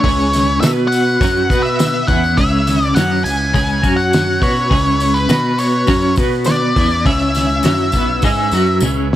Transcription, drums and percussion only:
0.04 kick medium
0.04 open hi-hat medium
0.33 snare soft
0.33 open hi-hat medium
0.33 tambourine medium
0.63 snare loud
0.63 open hi-hat medium
0.63 tambourine loud
0.92 open hi-hat medium
0.92 tambourine medium
1.08 tambourine soft
1.21 kick loud
1.21 open hi-hat medium
1.21 tambourine medium
1.37 tambourine soft
1.50 kick medium
1.50 open hi-hat soft
1.50 tambourine medium
1.66 tambourine soft
1.79 snare loud
1.79 open hi-hat medium
1.79 tambourine loud
2.08 kick loud
2.08 open hi-hat soft
2.24 tambourine soft
2.38 kick medium
2.38 open hi-hat medium
2.67 snare soft
2.67 open hi-hat soft
2.67 tambourine medium
2.82 tambourine soft
2.96 snare loud
2.96 open hi-hat medium
2.96 tambourine medium
3.26 open hi-hat medium
3.26 tambourine medium
3.41 tambourine soft
3.54 kick loud
3.54 open hi-hat medium
3.54 tambourine medium
3.70 tambourine soft
3.83 kick medium
3.83 open hi-hat soft
3.83 tambourine medium
3.99 tambourine soft
4.13 snare loud
4.13 open hi-hat medium
4.13 tambourine medium
4.42 kick loud
4.42 open hi-hat medium
4.56 tambourine soft
4.71 kick medium
4.71 open hi-hat medium
5.00 open hi-hat soft
5.00 tambourine medium
5.15 tambourine soft
5.29 snare loud
5.29 open hi-hat medium
5.29 tambourine medium
5.58 open hi-hat medium
5.58 tambourine medium
5.72 tambourine soft
5.87 kick loud
5.87 open hi-hat medium
5.87 tambourine medium
6.02 tambourine soft
6.16 kick loud
6.16 open hi-hat medium
6.16 tambourine medium
6.31 tambourine soft
6.44 snare medium
6.44 open hi-hat medium
6.44 tambourine medium
6.76 kick loud
6.76 open hi-hat medium
6.90 tambourine soft
7.06 kick medium
7.06 open hi-hat medium
7.19 tambourine soft
7.35 snare soft
7.35 open hi-hat medium
7.35 tambourine medium
7.49 tambourine soft
7.63 snare loud
7.63 open hi-hat medium
7.63 tambourine medium
7.78 tambourine soft
7.92 kick medium
7.92 open hi-hat soft
7.92 tambourine medium
8.22 kick loud
8.22 open hi-hat medium
8.22 tambourine medium
8.52 open hi-hat soft
8.52 tambourine medium
8.66 tambourine soft
8.80 high tom medium
8.80 tambourine loud

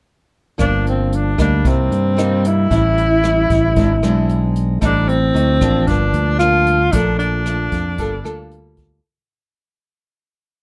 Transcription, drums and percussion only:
0.59 kick soft
0.59 cross-stick medium
0.59 closed hi-hat soft
0.86 closed hi-hat soft
1.12 closed hi-hat soft
1.39 kick soft
1.39 cross-stick soft
1.39 closed hi-hat soft
1.65 kick soft
1.65 closed hi-hat soft
1.92 closed hi-hat soft
2.18 cross-stick medium
2.18 closed hi-hat soft
2.44 closed hi-hat soft
2.71 kick soft
2.71 closed hi-hat soft
2.97 closed hi-hat soft
3.24 cross-stick medium
3.24 closed hi-hat soft
3.50 kick medium
3.50 closed hi-hat soft
3.76 kick soft
3.76 closed hi-hat soft
4.03 cross-stick medium
4.03 closed hi-hat soft
4.29 closed hi-hat soft
4.56 closed hi-hat soft
4.81 kick soft
4.81 cross-stick soft
4.81 closed hi-hat soft
5.09 closed hi-hat soft
5.36 closed hi-hat soft
5.61 kick soft
5.61 cross-stick medium
5.61 closed hi-hat soft
5.87 kick medium
5.87 closed hi-hat soft
6.13 closed hi-hat soft
6.39 cross-stick medium
6.39 closed hi-hat soft
6.67 closed hi-hat soft
6.92 kick soft
6.92 closed hi-hat medium
7.19 closed hi-hat soft
7.46 cross-stick medium
7.46 closed hi-hat soft
7.72 kick soft
7.72 closed hi-hat soft
7.98 kick soft
7.98 closed hi-hat soft
8.25 cross-stick medium
8.25 closed hi-hat soft
8.51 closed hi-hat soft
8.77 kick medium
8.77 closed hi-hat soft

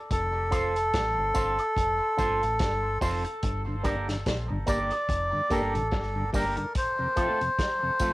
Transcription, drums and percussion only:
0.11 kick loud
0.11 closed hi-hat loud
0.52 kick medium
0.52 closed hi-hat medium
0.52 tambourine soft
0.52 high woodblock medium
0.76 closed hi-hat medium
0.94 kick loud
0.94 snare loud
0.94 closed hi-hat medium
1.35 kick medium
1.35 closed hi-hat medium
1.35 tambourine medium
1.59 closed hi-hat medium
1.59 high woodblock medium
1.77 kick loud
1.77 closed hi-hat medium
2.19 kick medium
2.19 closed hi-hat medium
2.19 tambourine medium
2.43 closed hi-hat medium
2.59 kick loud
2.59 snare loud
2.59 closed hi-hat medium
3.01 kick medium
3.01 open hi-hat medium
3.01 tambourine medium
3.24 closed hi-hat medium
3.43 kick loud
3.43 closed hi-hat loud
3.84 kick medium
3.84 closed hi-hat medium
3.84 tambourine soft
3.84 high woodblock medium
4.09 snare medium
4.09 closed hi-hat medium
4.26 kick loud
4.26 snare loud
4.26 closed hi-hat medium
4.67 kick medium
4.67 closed hi-hat medium
4.67 tambourine medium
4.91 closed hi-hat soft
4.91 high woodblock medium
5.09 kick loud
5.09 closed hi-hat medium
5.50 kick medium
5.50 closed hi-hat medium
5.50 tambourine soft
5.75 closed hi-hat medium
5.91 kick loud
5.91 snare loud
5.91 closed hi-hat medium
6.34 kick medium
6.34 open hi-hat medium
6.34 tambourine medium
6.57 closed hi-hat soft
6.75 kick loud
6.75 closed hi-hat loud
7.16 kick medium
7.16 closed hi-hat medium
7.16 tambourine soft
7.16 high woodblock medium
7.41 closed hi-hat medium
7.59 kick loud
7.59 snare loud
7.59 closed hi-hat medium
8.00 kick medium
8.00 closed hi-hat medium
8.00 tambourine medium

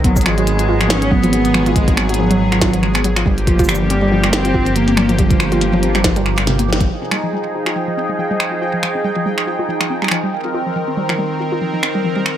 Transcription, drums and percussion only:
0.04 kick loud
0.04 closed hi-hat medium
0.16 kick loud
0.16 shaker medium
0.21 closed hi-hat medium
0.26 finger snap medium
0.38 closed hi-hat soft
0.47 closed hi-hat medium
0.59 closed hi-hat medium
0.81 finger snap soft
0.81 closed hi-hat soft
0.90 snare loud
0.90 closed hi-hat medium
1.02 closed hi-hat soft
1.11 kick medium
1.24 closed hi-hat soft
1.33 closed hi-hat medium
1.45 closed hi-hat soft
1.54 finger snap medium
1.54 high tom medium
1.66 closed hi-hat soft
1.76 kick loud
1.76 closed hi-hat medium
1.88 kick loud
1.88 closed hi-hat medium
1.97 finger snap medium
2.09 closed hi-hat soft
2.14 closed hi-hat medium
2.31 closed hi-hat medium
2.31 high tom medium
2.52 finger snap soft
2.52 closed hi-hat soft
2.62 kick loud
2.62 snare loud
2.62 closed hi-hat medium
2.74 closed hi-hat soft
2.83 finger snap soft
2.95 finger snap medium
2.95 closed hi-hat soft
3.04 closed hi-hat medium
3.16 finger snap medium
3.16 closed hi-hat soft
3.26 kick loud
3.38 closed hi-hat soft
3.47 kick loud
3.47 closed hi-hat medium
3.59 kick loud
3.59 closed hi-hat medium
3.59 shaker soft
3.64 shaker soft
3.69 finger snap medium
3.69 shaker soft
3.75 shaker medium
3.90 closed hi-hat medium
4.24 finger snap medium
4.24 closed hi-hat soft
4.33 snare loud
4.33 closed hi-hat medium
4.45 closed hi-hat soft
4.54 kick medium
4.66 closed hi-hat soft
4.76 closed hi-hat medium
4.88 closed hi-hat soft
4.97 finger snap medium
4.97 high tom medium
5.09 closed hi-hat soft
5.19 kick loud
5.19 closed hi-hat medium
5.31 kick loud
5.31 closed hi-hat medium
5.40 finger snap medium
5.52 closed hi-hat soft
5.61 closed hi-hat medium
5.73 high tom medium
5.83 closed hi-hat medium
5.95 finger snap medium
5.95 closed hi-hat soft
6.04 kick loud
6.04 snare loud
6.04 closed hi-hat medium
6.16 closed hi-hat medium
6.26 finger snap soft
6.38 finger snap medium
6.38 closed hi-hat soft
6.47 snare medium
6.59 closed hi-hat medium
6.73 snare medium
6.81 kick loud
6.81 closed hi-hat soft
7.11 finger snap medium
7.66 finger snap soft
8.40 finger snap medium
8.83 finger snap medium
9.38 finger snap soft
9.81 finger snap medium
10.02 finger snap soft
10.04 finger snap soft
10.08 finger snap medium
10.11 finger snap medium
11.09 finger snap soft
11.83 finger snap medium
12.26 finger snap medium

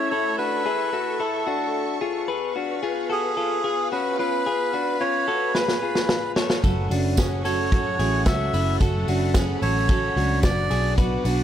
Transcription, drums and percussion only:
5.55 snare medium
5.68 snare medium
5.95 snare medium
6.09 snare medium
6.36 snare loud
6.50 snare loud
6.64 kick loud
6.64 ride medium
6.64 tambourine soft
6.91 open hi-hat medium
6.91 tambourine soft
7.17 kick loud
7.17 snare loud
7.17 hi-hat pedal medium
7.17 ride medium
7.17 tambourine loud
7.45 open hi-hat medium
7.45 tambourine medium
7.72 kick loud
7.72 hi-hat pedal medium
7.72 ride medium
7.99 open hi-hat medium
7.99 tambourine soft
8.26 kick loud
8.26 snare loud
8.26 hi-hat pedal medium
8.26 ride medium
8.26 tambourine medium
8.53 open hi-hat medium
8.53 tambourine medium
8.81 kick loud
8.81 hi-hat pedal medium
8.81 ride medium
8.81 tambourine medium
9.08 open hi-hat medium
9.08 tambourine medium
9.34 kick loud
9.34 snare loud
9.34 hi-hat pedal medium
9.34 ride medium
9.34 tambourine loud
9.62 open hi-hat medium
9.62 tambourine soft
9.89 kick loud
9.89 hi-hat pedal medium
9.89 ride medium
9.89 tambourine soft
10.17 open hi-hat medium
10.43 kick loud
10.43 snare loud
10.43 hi-hat pedal medium
10.43 ride medium
10.43 tambourine medium
10.71 open hi-hat medium
10.71 tambourine medium
10.98 kick loud
10.98 hi-hat pedal medium
10.98 ride medium
10.98 tambourine soft
11.25 open hi-hat medium
11.25 tambourine medium

